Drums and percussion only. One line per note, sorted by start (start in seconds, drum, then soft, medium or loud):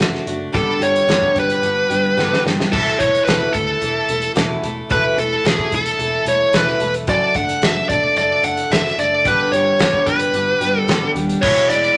0.00 snare medium
0.00 closed hi-hat medium
0.15 snare soft
0.27 closed hi-hat medium
0.54 kick loud
0.54 closed hi-hat medium
0.82 closed hi-hat medium
0.96 closed hi-hat medium
1.09 snare loud
1.09 closed hi-hat medium
1.22 kick medium
1.36 kick medium
1.36 closed hi-hat medium
1.50 closed hi-hat medium
1.63 closed hi-hat medium
1.91 closed hi-hat medium
2.19 snare medium
2.33 snare medium
2.47 snare medium
2.60 snare medium
2.73 kick loud
2.73 crash loud
3.00 kick medium
3.00 closed hi-hat medium
3.15 closed hi-hat medium
3.27 snare loud
3.27 closed hi-hat medium
3.54 kick medium
3.54 closed hi-hat medium
3.82 closed hi-hat medium
4.09 closed hi-hat medium
4.22 closed hi-hat medium
4.36 snare loud
4.36 closed hi-hat medium
4.64 closed hi-hat medium
4.90 kick loud
4.90 closed hi-hat medium
5.18 closed hi-hat medium
5.45 snare loud
5.45 closed hi-hat medium
5.59 kick medium
5.72 kick medium
5.72 closed hi-hat medium
5.86 closed hi-hat medium
6.00 closed hi-hat medium
6.26 closed hi-hat medium
6.53 snare loud
6.53 closed hi-hat medium
6.68 snare soft
6.80 closed hi-hat medium
6.94 closed hi-hat medium
7.07 kick loud
7.07 closed hi-hat medium
7.34 kick medium
7.34 closed hi-hat medium
7.49 closed hi-hat medium
7.62 snare loud
7.62 closed hi-hat medium
7.90 kick medium
7.90 closed hi-hat medium
8.17 closed hi-hat medium
8.44 closed hi-hat medium
8.57 closed hi-hat medium
8.72 snare loud
8.72 closed hi-hat medium
8.86 snare soft
8.99 closed hi-hat medium
9.25 kick loud
9.25 closed hi-hat medium
9.53 closed hi-hat medium
9.79 snare loud
9.79 closed hi-hat medium
9.93 kick medium
10.07 kick medium
10.07 closed hi-hat medium
10.20 closed hi-hat medium
10.34 closed hi-hat medium
10.61 closed hi-hat medium
10.88 snare loud
10.88 closed hi-hat medium
11.16 closed hi-hat medium
11.29 closed hi-hat medium
11.43 kick loud
11.43 crash loud
11.56 closed hi-hat soft
11.70 closed hi-hat medium
11.84 closed hi-hat soft